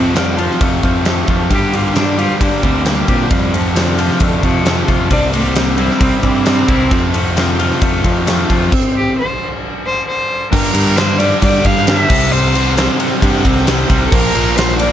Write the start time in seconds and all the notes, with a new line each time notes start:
Already playing: F2 C3 F3 A3 C4
0.15 F2 C3 F3 G3 C4, snare, ride
0.37 F2 C3 F3 F4, ride
0.51 snare
0.60 F2 C3 F3 A3, kick, ride
0.83 F2 C3 F3, kick, ride
1.05 F2 C3 F3 A3, snare, ride
1.28 F2 C3 F3 F4, kick, ride
1.50 G2 D3 G3 G4, kick, ride
1.73 G2 D3 G3 A#3 F4, ride
1.95 G2 D3 G3 D4, snare, ride
2.17 G2 D3 G3 F4 G4, ride
2.40 G2 D3 G3 A#3 D4, kick, ride
2.63 D2 G2 D3 G3 C4, kick, ride
2.85 G2 D3 G3 A#3, snare, ride
3.07 G2 A#2 D3 G3 C4 G4, kick, ride
3.30 F2 C3 F3 G3, kick, ride
3.53 F2 C3 F3 A3, ride
3.75 F2 C3 D3 F3 C4, snare, ride
3.98 F2 C3 F3 F4, ride
4.10 snare
4.20 F2 C3 D3 F3 A3, kick, ride
4.43 F2 C3 F3, kick, ride
4.66 F2 C3 F3 A3, snare, ride
4.88 F2 C3 F3 F4, kick, ride
5.10 C2 C3 G3 C4 D4, kick, ride
5.33 C3 G3 A#3 C4, ride
5.55 C3 G3 A#3 C4, snare, ride
5.78 C3 G3 C4 E4, ride
5.91 snare
6.00 C2 C3 G3 C4, kick, ride
6.21 G2 C3 E3 G3 C4, kick, ride
6.45 C3 G3 C4, snare, ride
6.68 C2 C3 G3 C4 E4, kick, ride
6.90 F2 C3 F3, kick, ride
7.13 F2 C3 F3 A3, ride
7.35 F2 C3 F3 C4, snare, ride
7.59 F2 C3 F3 F4, ride
7.72 snare
7.81 F2 C3 F3 A3, kick, ride
8.04 F2 C3 F3, kick, ride
8.27 F2 C3 F3 A3, snare, ride
8.49 F2 C3 F3 F4, kick, ride
8.72 kick, crash
8.96 G4
9.19 C5
9.86 C5
10.08 C5
10.52 G2 D3 G3 A#4, kick, crash
10.74 G2 D3 G3, ride
10.96 G2 D3 G3 C5, snare, ride
11.18 G2 D3 G3 D5, ride
11.41 G2 D3 G3 D5, kick, ride
11.64 G2 D3 G3 F5, kick, ride
11.77 snare
11.87 G2 D3 G3 E5, snare, ride
12.10 C2 C3 G3 C4, kick, crash
12.32 C3 G3 C4 C5
12.55 C3 G3 C4, ride
12.77 C3 G3 C4, snare, ride
12.99 C3 G3 C4, ride
13.22 G2 C3 G3 C4, kick, ride
13.44 C2 C3 G3 C4, kick, ride
13.57 snare
13.67 C3 G3 C4, snare, ride
13.89 C2 C3 G3 C4, kick, ride
14.05 A4
14.11 A#1 A#2 F3 A#3 A#4, kick, crash
14.35 A#1 A#2 F3 A#3, ride
14.56 A#2 F3 A#3 C5, snare, ride
14.79 A#2 F3 A#3 D5, ride